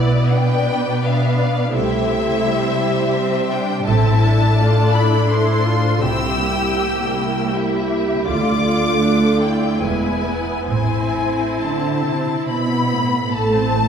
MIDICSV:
0, 0, Header, 1, 6, 480
1, 0, Start_track
1, 0, Key_signature, 0, "major"
1, 0, Tempo, 816327
1, 202, Tempo, 717703
1, 682, Tempo, 707547
1, 1149, Time_signature, 3, 2, 24, 8
1, 2587, Key_signature, 0, "minor"
1, 3562, Tempo, 745342
1, 5962, Tempo, 802139
1, 6442, Tempo, 858369
1, 6922, Tempo, 902256
1, 7882, Tempo, 841515
1, 8670, End_track
2, 0, Start_track
2, 0, Title_t, "Violin section"
2, 0, Program_c, 0, 48
2, 0, Note_on_c, 0, 74, 55
2, 173, Note_off_c, 0, 74, 0
2, 193, Note_on_c, 0, 79, 65
2, 676, Note_on_c, 0, 77, 50
2, 677, Note_off_c, 0, 79, 0
2, 1142, Note_on_c, 0, 76, 71
2, 1146, Note_off_c, 0, 77, 0
2, 2323, Note_off_c, 0, 76, 0
2, 2344, Note_on_c, 0, 79, 61
2, 2583, Note_off_c, 0, 79, 0
2, 2583, Note_on_c, 0, 81, 69
2, 3298, Note_off_c, 0, 81, 0
2, 3312, Note_on_c, 0, 83, 60
2, 3561, Note_off_c, 0, 83, 0
2, 3563, Note_on_c, 0, 84, 61
2, 4029, Note_on_c, 0, 88, 69
2, 4033, Note_off_c, 0, 84, 0
2, 4979, Note_off_c, 0, 88, 0
2, 5463, Note_on_c, 0, 86, 66
2, 6170, Note_off_c, 0, 86, 0
2, 6195, Note_on_c, 0, 79, 53
2, 6438, Note_on_c, 0, 80, 46
2, 6441, Note_off_c, 0, 79, 0
2, 6909, Note_off_c, 0, 80, 0
2, 6916, Note_on_c, 0, 80, 53
2, 7395, Note_off_c, 0, 80, 0
2, 7400, Note_on_c, 0, 81, 40
2, 7868, Note_on_c, 0, 83, 56
2, 7878, Note_off_c, 0, 81, 0
2, 8343, Note_off_c, 0, 83, 0
2, 8369, Note_on_c, 0, 81, 59
2, 8670, Note_off_c, 0, 81, 0
2, 8670, End_track
3, 0, Start_track
3, 0, Title_t, "Violin section"
3, 0, Program_c, 1, 48
3, 0, Note_on_c, 1, 71, 39
3, 0, Note_on_c, 1, 74, 41
3, 187, Note_off_c, 1, 71, 0
3, 188, Note_off_c, 1, 74, 0
3, 194, Note_on_c, 1, 71, 44
3, 195, Note_on_c, 1, 74, 41
3, 669, Note_off_c, 1, 74, 0
3, 678, Note_on_c, 1, 76, 44
3, 908, Note_on_c, 1, 74, 40
3, 914, Note_off_c, 1, 76, 0
3, 1126, Note_off_c, 1, 71, 0
3, 1145, Note_off_c, 1, 74, 0
3, 1145, Note_on_c, 1, 67, 44
3, 1145, Note_on_c, 1, 72, 49
3, 1615, Note_off_c, 1, 67, 0
3, 1624, Note_on_c, 1, 67, 47
3, 2558, Note_off_c, 1, 72, 0
3, 2565, Note_off_c, 1, 67, 0
3, 2582, Note_on_c, 1, 76, 43
3, 2584, Note_on_c, 1, 69, 46
3, 3058, Note_off_c, 1, 69, 0
3, 3059, Note_off_c, 1, 76, 0
3, 3064, Note_on_c, 1, 74, 43
3, 3066, Note_on_c, 1, 69, 43
3, 3549, Note_off_c, 1, 69, 0
3, 3558, Note_off_c, 1, 74, 0
3, 3566, Note_on_c, 1, 69, 43
3, 3568, Note_on_c, 1, 72, 45
3, 4026, Note_off_c, 1, 69, 0
3, 4027, Note_off_c, 1, 72, 0
3, 4032, Note_on_c, 1, 79, 48
3, 4036, Note_on_c, 1, 64, 45
3, 4508, Note_on_c, 1, 67, 45
3, 4515, Note_off_c, 1, 64, 0
3, 4757, Note_off_c, 1, 67, 0
3, 4758, Note_on_c, 1, 64, 43
3, 5000, Note_off_c, 1, 79, 0
3, 5004, Note_on_c, 1, 76, 40
3, 5459, Note_off_c, 1, 64, 0
3, 5475, Note_on_c, 1, 74, 40
3, 5476, Note_off_c, 1, 76, 0
3, 5476, Note_on_c, 1, 65, 42
3, 5949, Note_off_c, 1, 65, 0
3, 5949, Note_off_c, 1, 74, 0
3, 5957, Note_on_c, 1, 65, 38
3, 5957, Note_on_c, 1, 74, 38
3, 6430, Note_off_c, 1, 74, 0
3, 6431, Note_off_c, 1, 65, 0
3, 6444, Note_on_c, 1, 71, 36
3, 6449, Note_on_c, 1, 64, 38
3, 6914, Note_off_c, 1, 64, 0
3, 6921, Note_on_c, 1, 64, 36
3, 6923, Note_off_c, 1, 71, 0
3, 6924, Note_on_c, 1, 72, 37
3, 7862, Note_off_c, 1, 64, 0
3, 7864, Note_off_c, 1, 72, 0
3, 7880, Note_on_c, 1, 83, 45
3, 8350, Note_off_c, 1, 83, 0
3, 8369, Note_on_c, 1, 81, 55
3, 8670, Note_off_c, 1, 81, 0
3, 8670, End_track
4, 0, Start_track
4, 0, Title_t, "Viola section"
4, 0, Program_c, 2, 48
4, 0, Note_on_c, 2, 59, 39
4, 0, Note_on_c, 2, 64, 41
4, 185, Note_off_c, 2, 64, 0
4, 187, Note_off_c, 2, 59, 0
4, 194, Note_on_c, 2, 59, 41
4, 198, Note_on_c, 2, 62, 41
4, 669, Note_off_c, 2, 62, 0
4, 677, Note_on_c, 2, 62, 47
4, 1126, Note_off_c, 2, 59, 0
4, 1135, Note_on_c, 2, 57, 42
4, 1136, Note_on_c, 2, 64, 48
4, 1137, Note_off_c, 2, 62, 0
4, 1613, Note_off_c, 2, 57, 0
4, 1623, Note_on_c, 2, 55, 49
4, 1863, Note_off_c, 2, 55, 0
4, 1872, Note_on_c, 2, 55, 42
4, 2092, Note_off_c, 2, 64, 0
4, 2118, Note_on_c, 2, 60, 46
4, 2347, Note_off_c, 2, 60, 0
4, 2355, Note_on_c, 2, 62, 45
4, 2570, Note_off_c, 2, 55, 0
4, 2587, Note_on_c, 2, 64, 45
4, 2588, Note_on_c, 2, 60, 47
4, 2589, Note_off_c, 2, 62, 0
4, 2829, Note_off_c, 2, 60, 0
4, 2836, Note_on_c, 2, 62, 45
4, 3071, Note_off_c, 2, 64, 0
4, 3081, Note_on_c, 2, 65, 48
4, 3315, Note_off_c, 2, 65, 0
4, 3317, Note_on_c, 2, 64, 44
4, 3556, Note_off_c, 2, 64, 0
4, 3564, Note_on_c, 2, 64, 50
4, 3791, Note_on_c, 2, 65, 48
4, 3794, Note_off_c, 2, 64, 0
4, 4030, Note_off_c, 2, 65, 0
4, 4033, Note_on_c, 2, 67, 47
4, 4035, Note_on_c, 2, 60, 47
4, 4036, Note_off_c, 2, 62, 0
4, 4266, Note_off_c, 2, 60, 0
4, 4266, Note_on_c, 2, 58, 48
4, 4989, Note_off_c, 2, 67, 0
4, 4997, Note_on_c, 2, 67, 44
4, 5463, Note_off_c, 2, 67, 0
4, 5469, Note_on_c, 2, 65, 42
4, 5471, Note_on_c, 2, 57, 47
4, 5472, Note_off_c, 2, 58, 0
4, 5697, Note_off_c, 2, 65, 0
4, 5705, Note_on_c, 2, 65, 44
4, 5946, Note_on_c, 2, 62, 42
4, 5952, Note_off_c, 2, 65, 0
4, 6191, Note_on_c, 2, 64, 36
4, 6192, Note_off_c, 2, 62, 0
4, 6434, Note_on_c, 2, 56, 43
4, 6441, Note_off_c, 2, 57, 0
4, 6667, Note_on_c, 2, 59, 37
4, 6668, Note_off_c, 2, 56, 0
4, 6909, Note_off_c, 2, 64, 0
4, 6916, Note_on_c, 2, 64, 40
4, 6917, Note_on_c, 2, 60, 38
4, 6918, Note_off_c, 2, 59, 0
4, 8226, Note_off_c, 2, 64, 0
4, 8249, Note_off_c, 2, 60, 0
4, 8372, Note_on_c, 2, 57, 44
4, 8372, Note_on_c, 2, 69, 43
4, 8479, Note_off_c, 2, 69, 0
4, 8480, Note_off_c, 2, 57, 0
4, 8484, Note_on_c, 2, 72, 38
4, 8486, Note_on_c, 2, 60, 37
4, 8599, Note_on_c, 2, 69, 36
4, 8601, Note_on_c, 2, 57, 38
4, 8602, Note_off_c, 2, 72, 0
4, 8603, Note_off_c, 2, 60, 0
4, 8670, Note_off_c, 2, 57, 0
4, 8670, Note_off_c, 2, 69, 0
4, 8670, End_track
5, 0, Start_track
5, 0, Title_t, "Cello section"
5, 0, Program_c, 3, 48
5, 0, Note_on_c, 3, 47, 40
5, 1147, Note_off_c, 3, 47, 0
5, 1147, Note_on_c, 3, 48, 49
5, 2559, Note_off_c, 3, 48, 0
5, 2584, Note_on_c, 3, 45, 48
5, 4006, Note_off_c, 3, 45, 0
5, 4035, Note_on_c, 3, 36, 50
5, 5450, Note_off_c, 3, 36, 0
5, 5476, Note_on_c, 3, 38, 43
5, 6440, Note_on_c, 3, 40, 41
5, 6443, Note_off_c, 3, 38, 0
5, 6911, Note_off_c, 3, 40, 0
5, 6922, Note_on_c, 3, 45, 35
5, 7350, Note_off_c, 3, 45, 0
5, 7409, Note_on_c, 3, 50, 48
5, 7631, Note_off_c, 3, 50, 0
5, 7646, Note_on_c, 3, 48, 38
5, 7878, Note_on_c, 3, 47, 40
5, 7879, Note_on_c, 3, 59, 45
5, 7881, Note_off_c, 3, 48, 0
5, 8125, Note_on_c, 3, 45, 39
5, 8126, Note_off_c, 3, 47, 0
5, 8349, Note_off_c, 3, 59, 0
5, 8369, Note_off_c, 3, 45, 0
5, 8369, Note_on_c, 3, 57, 48
5, 8670, Note_off_c, 3, 57, 0
5, 8670, End_track
6, 0, Start_track
6, 0, Title_t, "Double bass section"
6, 0, Program_c, 4, 48
6, 0, Note_on_c, 4, 35, 41
6, 177, Note_off_c, 4, 35, 0
6, 1142, Note_on_c, 4, 36, 44
6, 1599, Note_off_c, 4, 36, 0
6, 2583, Note_on_c, 4, 33, 46
6, 3042, Note_off_c, 4, 33, 0
6, 4029, Note_on_c, 4, 36, 42
6, 4485, Note_off_c, 4, 36, 0
6, 5471, Note_on_c, 4, 38, 45
6, 5935, Note_off_c, 4, 38, 0
6, 6440, Note_on_c, 4, 28, 35
6, 6898, Note_off_c, 4, 28, 0
6, 6916, Note_on_c, 4, 33, 34
6, 7383, Note_off_c, 4, 33, 0
6, 8371, Note_on_c, 4, 33, 50
6, 8670, Note_off_c, 4, 33, 0
6, 8670, End_track
0, 0, End_of_file